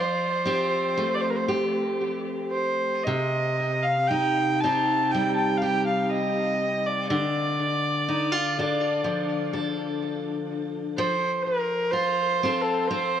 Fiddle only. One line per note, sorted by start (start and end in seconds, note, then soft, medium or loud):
0.00 1.16 C5 medium
1.15 1.23 D5 soft
1.21 1.32 C5 soft
1.30 1.38 A#4 soft
1.36 1.47 C5 soft
2.51 3.05 C5 medium
3.04 3.84 D#5 medium
3.83 4.09 F5 medium
4.08 4.62 G5 medium
4.61 5.13 A5 medium
5.12 5.35 G5 medium
5.34 5.59 G5 medium
5.34 5.37 A5 soft
5.57 5.64 F5 soft
5.62 5.86 G5 medium
5.86 6.04 F5 medium
6.04 6.11 F5 soft
6.10 6.88 D#5 medium
6.86 7.10 D5 medium
7.11 9.01 D5 medium
10.98 11.45 C5 medium
11.43 11.93 A#4 medium
11.91 12.63 C5 medium
12.62 12.89 A4 medium
12.88 13.20 C5 medium